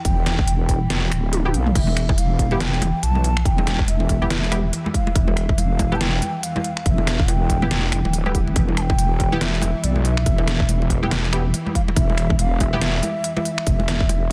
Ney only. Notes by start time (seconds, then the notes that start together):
Already playing: G5
1.54 F5
1.76 E5 F5
2.18 F5
2.61 A5
2.65 G5
3.03 A5
3.46 G5
3.88 E5
4.95 F5
5.16 E5
5.59 F5
5.95 A5
6.02 G5
6.44 F5
6.87 E5 F5
7.29 G5
8.77 G5 A5
9.41 E5
9.84 D5
10.05 E5
11.75 F5
11.97 E5
12.40 F5
12.61 E5